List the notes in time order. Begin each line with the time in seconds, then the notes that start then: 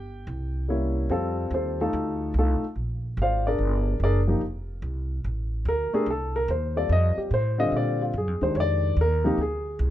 Already playing: G1 G4 G5
0.27 C2
0.68 G3 A#3 C#4 E4
1.09 F2 G3 C4 F4 A4
1.51 D#2 C4 G4 A4 C5
1.81 A3 D#4 F4 A4
1.93 D2
2.34 C2
2.39 A3 D#4 F4 A4
2.62 muted upright bass stroke
2.76 A#1
3.17 G#1
3.22 F4 C5 D5 F5
3.47 D4 G#4 A#4 D5
3.59 G1
4.00 F#1 D5
4.04 D4 G#4 A#4
4.28 F3 A#3 D#4 G4
4.41 F1
4.82 C2
5.24 A1
5.65 D2 A#4
5.93 A3 D4 G4 G#4 A#4, muted upright bass stroke
6.06 C2
6.10 A4
6.36 A#4
6.48 D#2 C5
6.76 G3 C4 F4 A4 D5
6.89 F2 D#5
7.17 G4, muted upright bass stroke
7.31 A2 C5
7.58 D3 G3 C4 F4 D#5
7.72 A#2
7.77 D5
8.02 F4
8.14 F#2
8.18 G#4
8.27 F2
8.41 D2 D#3 G#3 D4 G4 C5
8.55 F2 C#5
8.60 D5
8.97 D#2
9.01 A#4
9.24 C3 F3 A#3 D#4 G4
9.37 D2 G#4
9.79 C2